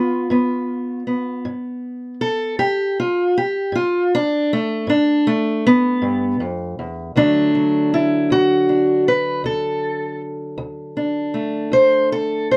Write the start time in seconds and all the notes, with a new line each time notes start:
Already playing: B3 F4
0.30 G2 B3
1.07 B3
1.45 G2
2.21 A4
2.59 G2 G4
3.00 F4
3.38 G4
3.72 G2 F4
4.15 D4
4.53 A3
4.87 G2 D4
5.27 A3
5.67 B3
6.02 G2
6.40 F2
6.79 E2
7.16 D2 D3 F#3 A3 D4
7.55 F#3
7.94 E4
8.30 D2 F#4
8.69 D4
9.08 B4
9.44 D2 A4
10.58 D2
10.97 D4
11.34 A3
11.72 D2 C5
12.12 A4
12.51 C5